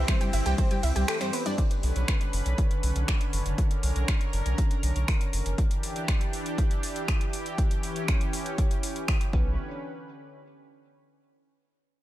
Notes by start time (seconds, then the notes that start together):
Already playing: E3 C4 G4
0.08 G3 C4 C5, finger snap, kick, closed hi-hat
0.21 G3 G4 G5, closed hi-hat
0.33 G1 E4 E5, open hi-hat, ride
0.46 C2 G3 G4 G5, closed hi-hat
0.58 G3 C4 C5, kick, closed hi-hat, ride
0.71 G3 G4 G5, closed hi-hat
0.83 C2 E4 E5, open hi-hat, ride
0.96 C2 G3 G4 G5, closed hi-hat
1.08 G4 A4 G5, finger snap, open hi-hat, ride
1.21 G3 C4 C5, finger snap, closed hi-hat
1.33 B3 B4, open hi-hat, ride
1.46 G3 D4 D5, closed hi-hat
1.58 D3 C#4 B4, kick, closed hi-hat
1.71 closed hi-hat
1.83 B1, open hi-hat
1.96 B1, closed hi-hat
2.08 finger snap, kick, closed hi-hat
2.21 closed hi-hat
2.33 F#1, open hi-hat
2.46 B1, closed hi-hat
2.58 kick, closed hi-hat
2.71 closed hi-hat
2.83 B1, open hi-hat
2.96 B1, closed hi-hat
3.08 finger snap, kick, closed hi-hat
3.21 closed hi-hat
3.33 F#1, open hi-hat
3.46 F#1, closed hi-hat
3.58 A#4, kick, closed hi-hat
3.71 closed hi-hat
3.83 B1, open hi-hat
3.96 B1, closed hi-hat
4.08 finger snap, kick, closed hi-hat
4.21 closed hi-hat
4.33 F#1, open hi-hat
4.46 B1, closed hi-hat
4.58 kick, closed hi-hat
4.71 closed hi-hat
4.83 B1, open hi-hat
4.96 B1, closed hi-hat
5.08 finger snap, kick, open hi-hat
5.21 closed hi-hat
5.33 F#1, open hi-hat
5.46 F#1, closed hi-hat
5.58 E3 D4 G4, kick, closed hi-hat
5.71 closed hi-hat
5.83 open hi-hat
5.96 closed hi-hat
6.08 finger snap, kick, closed hi-hat
6.21 closed hi-hat
6.33 open hi-hat
6.46 closed hi-hat
6.58 kick, closed hi-hat
6.71 closed hi-hat
6.83 open hi-hat
6.96 closed hi-hat
7.08 finger snap, kick, closed hi-hat
7.21 closed hi-hat
7.33 open hi-hat
7.46 closed hi-hat
7.58 C#4, kick, closed hi-hat
7.71 closed hi-hat
7.83 open hi-hat
7.96 closed hi-hat
8.08 finger snap, kick, closed hi-hat
8.21 closed hi-hat
8.33 open hi-hat
8.46 closed hi-hat
8.58 kick, closed hi-hat
8.71 closed hi-hat
8.83 open hi-hat
8.96 closed hi-hat
9.08 finger snap, kick, open hi-hat
9.21 closed hi-hat
9.33 B1 D3 B3 C#4 B4, kick